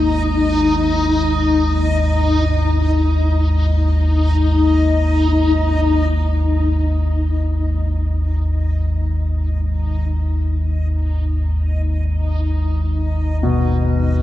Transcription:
Already playing: G#1 D#2 D#4 D#5
6.12 G#1 D#2 D#4 D#5
13.43 B2

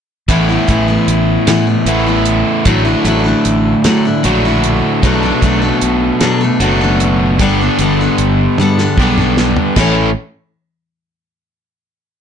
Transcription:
0.28 A1 A2 E3 A3 B3 E4, kick, closed hi-hat
0.49 A3 B3 E4
0.68 A1 E3 A3 B3 E4, kick, closed hi-hat
0.88 A3 B3 E4
1.08 A1, closed hi-hat
1.47 A2 E3 A3 B3 E4, snare, closed hi-hat
1.67 A3 B3 E4
1.86 A1 A2 E3 A3 B3, closed hi-hat
1.90 E4
2.07 A3 B3 E4
2.25 closed hi-hat
2.65 A1 A2 D3 F#3 A3 D4 E4 F#4, kick, closed hi-hat
2.85 A3 D4 E4
3.05 A1 F#3 A3 D4 E4, closed hi-hat
3.24 A3 D4 E4
3.45 A1, closed hi-hat
3.84 A2 F#3 A3 D4 E4, snare, closed hi-hat
4.05 A3 D4 E4
4.23 A#1 A2 D3 F#3 A3 D4 F#4, closed hi-hat
4.28 E4
4.45 A3 D4 E4
4.64 closed hi-hat
5.03 B1 B2 F#3 A3 B3 D4 F#4 A4, kick, closed hi-hat
5.23 A3 D4 A4
5.42 B1 F#3 A3 D4 A4, kick, closed hi-hat
5.62 A3 D4 A4
5.81 B1, closed hi-hat
6.21 B2 F#3 A3 D4 A4, snare, closed hi-hat
6.41 A3 D4 A4
6.60 F#1 B2 F#3 A3 B3 D4 F#4, closed hi-hat
6.64 A4
6.81 A3 D4 A4
7.00 closed hi-hat
7.39 G1 G2 D3 G3 B3 D4 G4 A4, kick, closed hi-hat
7.61 B3 D4 A4
7.79 G1 G3 B3 D4, closed hi-hat
7.84 A4
8.01 B3 D4 A4
8.18 G1, closed hi-hat
8.58 G2 G3 B3 D4, high tom
8.62 A4
8.78 D4 A4, snare
8.83 B3
8.97 B1 G2 D3 G3 B3 G4, kick
9.02 D4 A4
9.18 D4 A4, mid tom
9.22 B3
9.37 snare
9.57 floor tom
9.76 A1 A2 E3 A3 C#4 E4, kick, snare, crash
9.81 A4

